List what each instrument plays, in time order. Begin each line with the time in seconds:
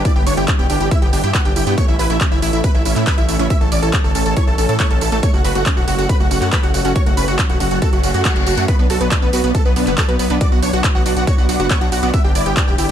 Already playing: analog synth pad G3 D4 E4 B4 D5
0.05 synth pluck E4, supersaw synth D5, digital synth lead D6, kick, closed hi-hat, tambourine
0.16 analog synth bass G1, synth pluck B3, supersaw synth G4, digital synth lead G5, tambourine
0.26 analog synth bass G1, synth pluck D4, supersaw synth C#5, digital synth lead C#6, open hi-hat, tambourine
0.37 analog synth bass G1, synth pluck E4, supersaw synth G4, digital synth lead G5, closed hi-hat, tambourine
0.48 kick, clap, closed hi-hat, tambourine
0.59 analog synth bass E1, synth pluck B3, supersaw synth G4, digital synth lead G5, tambourine
0.70 analog synth bass G1, synth pluck D4, supersaw synth G4, digital synth lead G5, open hi-hat, tambourine
0.80 analog synth bass G1, supersaw synth G4, digital synth lead G5, closed hi-hat, tambourine
0.91 synth pluck E4, supersaw synth E5, digital synth lead E6, kick, closed hi-hat, tambourine
1.02 analog synth bass G1, synth pluck B3, supersaw synth G4, digital synth lead G5, closed hi-hat, tambourine
1.13 analog synth bass G1, synth pluck D4, supersaw synth G4, digital synth lead G5, open hi-hat, tambourine
1.23 analog synth bass G2, synth pluck E4, supersaw synth G4, digital synth lead G5, closed hi-hat, tambourine
1.34 synth pluck B3, supersaw synth F#5, digital synth lead F#6, kick, clap, closed hi-hat, tambourine
1.45 analog synth bass G1, synth pluck D4, supersaw synth G4, digital synth lead G5, closed hi-hat, tambourine
1.56 analog synth bass G1, synth pluck E4, supersaw synth G4, digital synth lead G5, open hi-hat, tambourine
1.67 analog synth bass G2, synth pluck B3, supersaw synth G4, digital synth lead G5, closed hi-hat, tambourine
1.77 analog synth pad E3 A3 C#4 A4 C#5, synth pluck A3, supersaw synth C#5, digital synth lead C#6, kick, closed hi-hat, tambourine
1.88 analog synth bass A1, synth pluck C#4, supersaw synth E4, digital synth lead E5, tambourine
1.99 analog synth bass A1, synth pluck E4, supersaw synth B4, digital synth lead B5, open hi-hat, tambourine
2.10 analog synth bass A1, synth pluck A3, supersaw synth E4, digital synth lead E5, closed hi-hat, tambourine
2.21 synth pluck C#4, kick, clap, closed hi-hat, tambourine
2.31 analog synth bass G1, supersaw synth E4, digital synth lead E5, tambourine
2.42 analog synth bass A1, supersaw synth E4, synth pluck E4, digital synth lead E5, open hi-hat, tambourine
2.53 analog synth bass A1, supersaw synth E4, digital synth lead E5, closed hi-hat, tambourine
2.64 supersaw synth B4, digital synth lead B5, kick, closed hi-hat, tambourine
2.74 analog synth bass A1, synth pluck A3, supersaw synth E4, digital synth lead E5, tambourine
2.85 analog synth bass A1, synth pluck C#4, supersaw synth E4, digital synth lead E5, open hi-hat, tambourine
2.96 analog synth bass A2, supersaw synth E4, digital synth lead E5, clap, closed hi-hat, tambourine
3.07 supersaw synth B4, digital synth lead B5, kick, clap, closed hi-hat, tambourine
3.18 analog synth bass A1, synth pluck E4, supersaw synth E4, digital synth lead E5, closed hi-hat, tambourine
3.29 analog synth bass A1, synth pluck A3, supersaw synth E4, digital synth lead E5, open hi-hat, tambourine
3.39 analog synth bass A1, synth pluck C#4, supersaw synth E4, digital synth lead E5, closed hi-hat, tambourine
3.50 synth pluck E4, supersaw synth E5, digital synth lead E6, kick, closed hi-hat, tambourine
3.61 analog synth bass A1, synth pluck A3, supersaw synth A4, digital synth lead A5, tambourine
3.72 analog synth bass A1, synth pluck C#4, supersaw synth D5, digital synth lead D6, open hi-hat, tambourine
3.82 analog synth bass A1, synth pluck E4, supersaw synth A4, digital synth lead A5, closed hi-hat, tambourine
3.93 kick, clap, closed hi-hat, tambourine
4.04 analog synth bass G1, synth pluck A3, supersaw synth A4, digital synth lead A5, tambourine
4.15 analog synth bass A1, synth pluck C#4, supersaw synth A4, digital synth lead A5, open hi-hat, tambourine
4.26 analog synth bass A1, supersaw synth A4, digital synth lead A5, closed hi-hat, tambourine
4.36 synth pluck E4, supersaw synth C#5, digital synth lead C#6, kick, closed hi-hat, tambourine
4.47 analog synth bass A1, synth pluck A3, supersaw synth A4, digital synth lead A5, tambourine
4.58 analog synth bass A1, synth pluck C#4, supersaw synth A4, digital synth lead A5, open hi-hat, tambourine
4.69 analog synth bass A2, synth pluck E4, supersaw synth A4, digital synth lead A5, closed hi-hat, tambourine
4.80 synth pluck A3, supersaw synth C#5, digital synth lead C#6, kick, clap, closed hi-hat, tambourine
4.91 analog synth bass A1, synth pluck C#4, supersaw synth A4, digital synth lead A5, closed hi-hat, tambourine
5.01 analog synth bass A1, synth pluck E4, supersaw synth A4, digital synth lead A5, open hi-hat, tambourine
5.12 analog synth bass A1, synth pluck A3, supersaw synth A4, digital synth lead A5, closed hi-hat, tambourine
5.23 analog synth pad F#3 C#4, synth pluck A3, supersaw synth C#5, digital synth lead C#6, kick, closed hi-hat, tambourine
5.34 analog synth bass F#1, synth pluck C#4, supersaw synth F#4, digital synth lead F#5, tambourine
5.44 analog synth bass F#1, synth pluck F#4, supersaw synth B4, digital synth lead B5, open hi-hat, tambourine
5.55 analog synth bass F#1, synth pluck A3, supersaw synth F#4, digital synth lead F#5, closed hi-hat, tambourine
5.66 synth pluck C#4, kick, clap, closed hi-hat, tambourine
5.77 analog synth bass E1, supersaw synth F#4, digital synth lead F#5, tambourine
5.88 analog synth bass F#1, supersaw synth F#4, synth pluck F#4, digital synth lead F#5, open hi-hat, tambourine
5.98 analog synth bass F#1, supersaw synth F#4, digital synth lead F#5, closed hi-hat, tambourine
6.09 supersaw synth B4, digital synth lead B5, kick, closed hi-hat, tambourine
6.20 analog synth bass F#1, synth pluck A3, supersaw synth F#4, digital synth lead F#5, tambourine
6.31 analog synth bass F#1, synth pluck C#4, supersaw synth F#4, digital synth lead F#5, open hi-hat, tambourine
6.41 analog synth bass F#2, supersaw synth F#4, digital synth lead F#5, clap, closed hi-hat, tambourine
6.52 supersaw synth B4, digital synth lead B5, kick, clap, closed hi-hat, tambourine
6.63 analog synth bass F#1, synth pluck F#4, supersaw synth F#4, digital synth lead F#5, closed hi-hat, tambourine
6.74 analog synth bass F#1, synth pluck A3, supersaw synth F#4, digital synth lead F#5, open hi-hat, tambourine
6.85 analog synth bass F#1, synth pluck C#4, supersaw synth F#4, digital synth lead F#5, closed hi-hat, tambourine
6.95 synth pluck F#4, supersaw synth C#5, digital synth lead C#6, kick, closed hi-hat, tambourine
7.06 analog synth bass F#1, synth pluck A3, supersaw synth F#4, digital synth lead F#5, closed hi-hat, tambourine
7.17 analog synth bass F#1, synth pluck C#4, supersaw synth B4, digital synth lead B5, open hi-hat, tambourine
7.28 analog synth bass F#1, synth pluck F#4, supersaw synth F#4, digital synth lead F#5, closed hi-hat, tambourine
7.39 kick, clap, closed hi-hat, tambourine
7.50 analog synth bass E1, synth pluck A3, supersaw synth F#4, digital synth lead F#5, closed hi-hat, tambourine
7.60 analog synth bass F#1, synth pluck C#4, supersaw synth F#4, digital synth lead F#5, open hi-hat, tambourine
7.71 analog synth bass F#1, supersaw synth F#4, digital synth lead F#5, closed hi-hat, tambourine
7.82 synth pluck F#4, supersaw synth A4, digital synth lead A5, kick, closed hi-hat, tambourine, reverse cymbal
7.93 analog synth bass F#1, synth pluck A3, supersaw synth F#4, digital synth lead F#5, closed hi-hat, tambourine
8.03 analog synth bass F#1, synth pluck C#4, supersaw synth F#4, digital synth lead F#5, open hi-hat, tambourine
8.14 analog synth bass F#2, synth pluck F#4, supersaw synth F#4, digital synth lead F#5, closed hi-hat, tambourine
8.25 synth pluck A3, supersaw synth F#4, digital synth lead F#5, kick, clap, closed hi-hat, tambourine
8.36 analog synth bass F#1, synth pluck C#4, supersaw synth F#4, digital synth lead F#5, closed hi-hat, tambourine
8.46 analog synth bass F#1, supersaw synth F#4, synth pluck F#4, digital synth lead F#5, open hi-hat, tambourine
8.57 analog synth bass F#2, synth pluck A3, supersaw synth F#4, digital synth lead F#5, closed hi-hat, tambourine
8.68 analog synth pad B3 D4 B4 D5, synth pluck B3, supersaw synth B4, digital synth lead B5, kick, closed hi-hat, tambourine
8.79 analog synth bass B1, supersaw synth B3, synth pluck D4, digital synth lead B4, tambourine
8.90 analog synth bass B1, synth pluck F#4, supersaw synth A4, digital synth lead A5, open hi-hat, tambourine
9.01 analog synth bass B1, supersaw synth B3, synth pluck B3, digital synth lead B4, closed hi-hat, tambourine
9.11 synth pluck D4, kick, clap, closed hi-hat, tambourine
9.22 analog synth bass A1, supersaw synth B3, digital synth lead B4, tambourine
9.33 analog synth bass B1, supersaw synth B3, synth pluck F#4, digital synth lead B4, open hi-hat, tambourine
9.44 analog synth bass B1, supersaw synth B3, digital synth lead B4, closed hi-hat, tambourine
9.55 supersaw synth A4, digital synth lead A5, kick, closed hi-hat, tambourine
9.65 analog synth bass B1, synth pluck B3, supersaw synth B3, digital synth lead B4, tambourine
9.76 analog synth bass B1, supersaw synth B3, synth pluck D4, digital synth lead B4, open hi-hat, tambourine
9.87 analog synth bass F#1, supersaw synth B3, digital synth lead B4, clap, closed hi-hat, tambourine
9.98 supersaw synth A4, digital synth lead A5, kick, clap, closed hi-hat, tambourine
10.08 analog synth bass B1, supersaw synth B3, synth pluck F#4, digital synth lead B4, closed hi-hat, tambourine
10.19 analog synth bass B1, synth pluck B3, supersaw synth B3, digital synth lead B4, open hi-hat, tambourine
10.30 analog synth bass B1, supersaw synth B3, synth pluck D4, digital synth lead B4, closed hi-hat, tambourine
10.41 synth pluck F#4, supersaw synth D5, digital synth lead D6, kick, closed hi-hat, tambourine
10.52 analog synth bass B1, synth pluck B3, supersaw synth F#4, digital synth lead F#5, tambourine
10.62 analog synth bass B1, synth pluck D4, supersaw synth C#5, digital synth lead C#6, open hi-hat, tambourine
10.73 analog synth bass B1, synth pluck F#4, supersaw synth F#4, digital synth lead F#5, closed hi-hat, tambourine
10.84 kick, clap, closed hi-hat, tambourine
10.95 analog synth bass A1, synth pluck B3, supersaw synth F#4, digital synth lead F#5, tambourine
11.06 analog synth bass B1, synth pluck D4, supersaw synth F#4, digital synth lead F#5, open hi-hat, tambourine
11.16 analog synth bass B1, supersaw synth F#4, digital synth lead F#5, closed hi-hat, tambourine
11.27 synth pluck F#4, supersaw synth C#5, digital synth lead C#6, kick, closed hi-hat, tambourine
11.38 analog synth bass B1, synth pluck B3, supersaw synth F#4, digital synth lead F#5, tambourine
11.49 analog synth bass B1, synth pluck D4, supersaw synth F#4, digital synth lead F#5, open hi-hat, tambourine
11.60 analog synth bass F#1, synth pluck F#4, supersaw synth F#4, digital synth lead F#5, closed hi-hat, tambourine
11.70 synth pluck B3, supersaw synth C#5, digital synth lead C#6, kick, clap, closed hi-hat, tambourine
11.81 analog synth bass B1, synth pluck D4, supersaw synth F#4, digital synth lead F#5, closed hi-hat, tambourine
11.92 analog synth bass B1, synth pluck F#4, supersaw synth F#4, digital synth lead F#5, open hi-hat, tambourine
12.03 analog synth bass B1, synth pluck B3, supersaw synth F#4, digital synth lead F#5, closed hi-hat, tambourine
12.13 analog synth pad G3 E4, synth pluck B3, supersaw synth E5, digital synth lead E6, kick, closed hi-hat, tambourine
12.24 analog synth bass G1, synth pluck D4, supersaw synth G4, digital synth lead G5, tambourine
12.35 analog synth bass G1, synth pluck E4, supersaw synth D5, digital synth lead D6, open hi-hat, tambourine
12.46 analog synth bass G1, synth pluck B3, supersaw synth G4, digital synth lead G5, closed hi-hat, tambourine
12.57 synth pluck D4, kick, clap, closed hi-hat, tambourine
12.67 analog synth bass E1, supersaw synth G4, digital synth lead G5, tambourine
12.78 analog synth bass G1, synth pluck E4, supersaw synth G4, digital synth lead G5, open hi-hat, tambourine